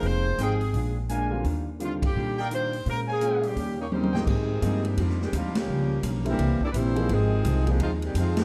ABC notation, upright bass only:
X:1
M:4/4
L:1/8
Q:"Swing" 1/4=170
K:Eb
V:1 name="Upright bass" clef=bass
F,,,2 A,,,2 B,,,4 | E,,4 B,,4 | B,,4 E,,4 | A,,2 G,,2 F,,2 E,,2 |
_D,,2 _C,,2 =C,, z B,,,2 | A,,,2 C,,2 E,,2 F,,2 |]